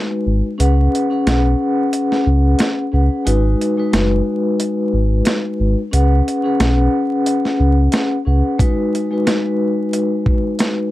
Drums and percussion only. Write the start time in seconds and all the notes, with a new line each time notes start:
0.60 closed hi-hat
0.95 closed hi-hat
1.27 snare, closed hi-hat
1.93 closed hi-hat
2.12 snare
2.59 snare, closed hi-hat
3.27 closed hi-hat
3.61 closed hi-hat
3.93 snare, closed hi-hat
4.60 closed hi-hat
5.25 snare, closed hi-hat
5.93 closed hi-hat
6.28 closed hi-hat
6.60 snare, closed hi-hat
7.26 closed hi-hat
7.45 snare
7.92 snare, closed hi-hat
8.59 kick, closed hi-hat
8.95 closed hi-hat
9.27 snare, closed hi-hat
9.93 closed hi-hat
10.26 kick
10.59 snare, closed hi-hat